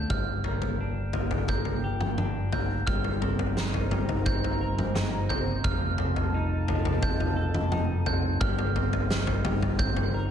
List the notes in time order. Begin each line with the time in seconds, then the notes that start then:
Already playing: D3 A3 C4 G6
0.09 G1 G2 F4 A#4 G5 F6, kick, floor tom
0.44 A#3, floor tom
0.62 floor tom
0.81 D4
1.13 F3, floor tom
1.31 floor tom
1.48 A#3 G6, kick, floor tom
1.65 floor tom
1.84 G4
2.01 mid tom
2.18 D4, mid tom
2.53 A#3 G6, floor tom
2.87 G1 G3 D#4 C5 A#5 F6, kick, floor tom
3.04 floor tom
3.22 C4, floor tom
3.39 floor tom
3.57 D#4, snare
3.74 floor tom
3.91 G3, floor tom, mid tom
4.09 floor tom
4.26 C4 G6, kick, floor tom
4.44 floor tom
4.61 A#4
4.79 mid tom
4.95 D#4, snare, mid tom
5.29 C4 G6, floor tom
5.64 F1 F3 F4 D#5 A5 F6, kick, floor tom
5.98 C4, floor tom
6.16 floor tom
6.34 D#4
6.68 F3, floor tom
6.85 floor tom
7.03 C4 G6, kick, floor tom
7.20 floor tom
7.37 A4
7.54 mid tom
7.72 D#4, mid tom
8.06 C4 G6, floor tom
8.40 G1 G3 D#4 C5 G5 F6, kick, floor tom
8.59 floor tom
8.76 C4, floor tom
8.93 floor tom
9.11 D#4, snare
9.27 floor tom
9.45 G3, floor tom, mid tom
9.63 floor tom
9.79 C4 G6, kick, floor tom
9.97 floor tom
10.14 A#4